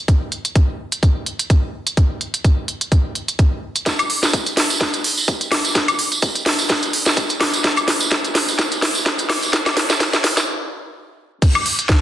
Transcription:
0.08 kick loud
0.08 closed hi-hat medium
0.32 closed hi-hat soft
0.45 closed hi-hat soft
0.55 kick loud
0.55 closed hi-hat medium
0.92 closed hi-hat soft
1.03 kick loud
1.03 closed hi-hat medium
1.26 closed hi-hat soft
1.39 closed hi-hat medium
1.50 kick medium
1.50 closed hi-hat medium
1.87 closed hi-hat medium
1.97 kick loud
1.97 closed hi-hat medium
2.21 closed hi-hat soft
2.34 closed hi-hat soft
2.44 kick loud
2.44 closed hi-hat medium
2.68 closed hi-hat soft
2.81 closed hi-hat soft
2.92 kick loud
2.92 closed hi-hat medium
3.15 closed hi-hat soft
3.28 closed hi-hat medium
3.39 kick loud
3.39 closed hi-hat medium
3.76 closed hi-hat soft
3.86 kick loud
3.86 snare soft
3.86 closed hi-hat medium
3.86 tambourine medium
3.99 closed hi-hat medium
3.99 tambourine soft
3.99 high woodblock medium
4.10 open hi-hat loud
4.23 snare soft
4.23 closed hi-hat soft
4.23 tambourine medium
4.33 kick loud
4.33 closed hi-hat medium
4.33 tambourine medium
4.46 closed hi-hat soft
4.46 tambourine soft
4.57 snare soft
4.57 open hi-hat loud
4.70 tambourine medium
4.81 kick loud
4.81 snare medium
4.81 closed hi-hat medium
4.93 closed hi-hat medium
4.93 tambourine soft
5.04 open hi-hat loud
5.17 tambourine medium
5.28 kick loud
5.28 closed hi-hat medium
5.41 closed hi-hat medium
5.41 tambourine soft
5.52 snare medium
5.52 open hi-hat loud
5.52 high woodblock medium
5.65 closed hi-hat soft
5.65 tambourine medium
5.75 kick loud
5.75 snare medium
5.75 closed hi-hat medium
5.88 closed hi-hat medium
5.88 tambourine soft
5.88 high woodblock medium
5.99 open hi-hat loud
6.12 closed hi-hat soft
6.12 tambourine medium
6.22 kick loud
6.22 closed hi-hat medium
6.22 tambourine medium
6.35 closed hi-hat soft
6.35 tambourine soft
6.46 snare medium
6.46 open hi-hat loud
6.59 tambourine medium
6.69 kick loud
6.69 snare medium
6.69 closed hi-hat medium
6.69 tambourine medium
6.82 closed hi-hat medium
6.82 tambourine soft
6.93 open hi-hat loud
7.06 snare medium
7.06 tambourine medium
7.16 kick loud
7.16 closed hi-hat medium
7.16 tambourine medium
7.29 closed hi-hat medium
7.29 tambourine soft
7.41 snare medium
7.41 open hi-hat loud
7.41 high woodblock medium
7.53 closed hi-hat soft
7.53 tambourine medium
7.64 kick loud
7.64 snare medium
7.64 closed hi-hat medium
7.64 tambourine medium
7.76 closed hi-hat medium
7.76 tambourine soft
7.76 high woodblock medium
7.88 snare medium
7.88 open hi-hat loud
8.00 closed hi-hat soft
8.00 tambourine medium
8.11 kick loud
8.11 snare medium
8.11 closed hi-hat medium
8.11 tambourine medium
8.24 closed hi-hat soft
8.24 tambourine soft
8.35 snare medium
8.35 open hi-hat loud
8.48 tambourine medium
8.59 kick loud
8.59 snare medium
8.59 closed hi-hat medium
8.59 tambourine medium
8.72 closed hi-hat medium
8.72 tambourine soft
8.82 snare medium
8.82 open hi-hat loud
8.95 tambourine medium
9.06 kick loud
9.06 snare medium
9.06 closed hi-hat medium
9.06 tambourine medium
9.18 closed hi-hat medium
9.18 tambourine soft
9.30 snare medium
9.30 open hi-hat loud
9.30 high woodblock medium
9.43 closed hi-hat soft
9.43 tambourine medium
9.53 kick loud
9.53 snare medium
9.53 closed hi-hat medium
9.66 snare medium
9.66 closed hi-hat medium
9.66 tambourine soft
9.66 high woodblock medium
9.77 snare medium
9.77 open hi-hat loud
9.90 snare medium
9.90 closed hi-hat soft
9.90 tambourine medium
10.00 kick loud
10.00 snare loud
10.00 closed hi-hat medium
10.00 tambourine medium
10.13 snare medium
10.13 closed hi-hat soft
10.13 tambourine soft
10.24 snare loud
10.24 open hi-hat loud
10.37 snare medium
10.37 closed hi-hat soft
10.37 tambourine medium
11.42 kick loud
11.42 closed hi-hat medium
11.42 crash loud
11.55 high woodblock medium
11.66 open hi-hat loud
11.79 closed hi-hat medium
11.89 kick loud
11.89 snare loud
11.89 closed hi-hat medium

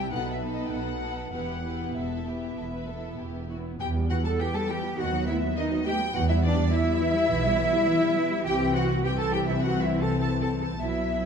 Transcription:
0.00 0.12 G3 soft
0.00 0.12 E4 soft
0.00 0.12 G4 soft
0.00 0.12 E5 soft
0.00 0.12 G5 medium
0.12 0.65 B1 medium
0.12 0.64 B2 medium
0.12 0.41 B3 soft
0.12 0.41 D#4 soft
0.12 0.39 A4 soft
0.12 0.40 B4 soft
0.12 0.31 F#5 medium
0.32 0.40 E5 medium
0.41 1.01 B3 soft
0.41 1.01 D#4 soft
0.41 1.00 A4 soft
0.41 1.00 B4 soft
0.52 0.64 D#5 medium
0.64 0.72 G5 soft
0.71 1.25 B1 soft
0.71 1.26 B2 medium
0.71 1.31 F#5 medium
1.01 1.31 B3 soft
1.01 1.32 D#4 soft
1.01 1.32 A4 soft
1.01 1.32 B4 soft
1.32 1.88 E1 soft
1.32 1.88 E2 soft
1.32 1.63 B3 soft
1.32 1.63 E4 soft
1.32 1.63 G4 soft
1.32 1.63 B4 soft
1.32 1.94 F#5 medium
1.64 2.25 B3 soft
1.64 2.25 E4 soft
1.64 1.89 G4 soft
1.64 1.89 B4 soft
1.95 2.50 E1 soft
1.95 2.50 E2 soft
1.95 2.25 A4 soft
1.95 3.49 E5 soft
2.26 2.86 B3 soft
2.26 2.86 E4 soft
2.26 2.57 G4 soft
2.57 3.11 E1 soft
2.57 3.11 E2 soft
2.57 2.64 A4 soft
2.73 2.88 B4 soft
2.88 3.48 B3 soft
2.88 3.48 E4 soft
2.88 3.19 A4 soft
3.19 3.73 E1 soft
3.19 3.73 E2 soft
3.19 3.50 G4 soft
3.49 3.79 B3 soft
3.49 3.79 E4 soft
3.49 3.58 F#4 soft
3.80 4.30 E2 medium
3.80 3.94 E3 medium
3.80 8.41 B3 medium
3.80 3.88 G4 medium
3.80 3.88 G5 medium
3.95 4.10 G3 medium
4.09 4.24 E3 medium
4.09 4.16 F#4 medium
4.09 4.24 F#5 medium
4.09 4.15 F#5 medium
4.24 4.39 G3 medium
4.24 4.39 A4 medium
4.24 4.30 A5 medium
4.39 4.53 E3 medium
4.39 4.54 G4 medium
4.39 4.45 G5 medium
4.39 4.54 G5 medium
4.53 4.68 G3 medium
4.53 4.69 A4 medium
4.53 4.59 A5 medium
4.53 4.69 A5 medium
4.68 4.83 E3 medium
4.68 4.98 G4 medium
4.68 4.76 G5 medium
4.68 4.98 G5 medium
4.83 4.97 G3 medium
4.97 5.47 D#2 medium
4.97 5.11 D#3 medium
4.97 5.27 F#4 medium
4.97 5.26 F#5 medium
4.97 5.27 F#5 medium
5.12 5.27 F#3 medium
5.27 5.42 A3 medium
5.27 5.35 E4 medium
5.27 5.55 E5 medium
5.27 5.35 E5 medium
5.41 5.56 F#3 medium
5.56 5.71 D#3 medium
5.56 5.85 D#4 medium
5.56 5.85 D#5 medium
5.56 5.64 D#5 medium
5.71 5.85 F#3 medium
5.85 5.99 A3 medium
5.85 5.94 G4 medium
5.85 6.14 G5 medium
5.85 6.13 G5 medium
6.00 6.14 F#3 medium
6.14 6.62 E2 medium
6.14 6.28 E3 medium
6.14 6.20 F#4 medium
6.14 6.28 F#5 medium
6.14 6.20 F#5 medium
6.28 6.43 G3 medium
6.28 6.35 E4 medium
6.28 6.34 E5 medium
6.28 6.43 E5 medium
6.42 6.57 E3 medium
6.42 6.71 D4 loud
6.42 6.50 D5 medium
6.42 6.71 D5 medium
6.57 6.71 G3 medium
6.71 6.85 E3 medium
6.71 8.42 E4 loud
6.71 8.42 E5 loud
6.71 8.46 E5 medium
6.86 7.00 G3 medium
7.00 7.15 E3 medium
7.15 7.29 G3 medium
7.29 7.77 B1 medium
7.29 7.43 E3 medium
7.44 7.58 G3 medium
7.58 7.72 E3 medium
7.73 7.87 G3 medium
7.87 8.01 E3 medium
8.01 8.16 G3 medium
8.16 8.30 E3 medium
8.30 8.45 G3 medium
8.45 10.77 C2 medium
8.45 8.99 E3 medium
8.45 8.99 C4 medium
8.45 8.75 G4 loud
8.45 8.74 G5 medium
8.45 8.54 G5 medium
8.75 9.03 F#4 medium
8.75 9.03 F#5 medium
8.75 8.84 F#5 medium
9.03 10.77 E3 medium
9.03 10.77 C4 medium
9.03 9.10 G4 loud
9.03 9.17 G5 medium
9.03 9.18 G5 medium
9.18 9.32 A4 medium
9.18 9.32 A5 medium
9.18 9.33 A5 medium
9.32 9.47 G4 loud
9.32 9.47 G5 medium
9.32 9.39 G5 medium
9.46 9.53 E4 medium
9.46 9.61 E5 medium
9.62 9.81 F#4 medium
9.62 9.82 F#5 medium
9.81 10.02 E4 medium
9.81 10.01 E5 medium
10.01 10.20 A4 medium
10.01 10.19 A5 medium
10.01 10.20 A5 medium
10.21 10.29 A4 medium
10.21 10.29 A5 medium
10.21 10.40 A5 medium
10.41 10.49 A4 medium
10.41 10.49 A5 medium
10.41 10.60 A5 medium
10.61 10.69 A4 medium
10.61 10.69 A5 medium
10.61 10.80 A5 medium
10.80 11.26 B1 medium
10.80 11.26 F#3 soft
10.80 11.26 B3 soft
10.80 11.26 E4 medium
10.80 11.26 E5 medium

